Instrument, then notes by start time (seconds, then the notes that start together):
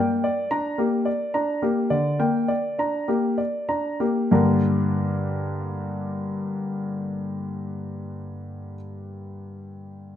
grand piano
Already playing: A#3 G5
0.24 D5
0.51 D4 A#5
0.78 A#3 G4
1.05 D5
1.34 D4 A#5
1.62 A#3 G4
1.90 D3 D5
2.19 A#3 G5
2.48 D5
2.79 D4 A#5
3.08 A#3 G4
3.38 D5
3.69 D4 A#5
4.00 A#3 G4
4.31 G2 D3 A#3 D4 G4 A#4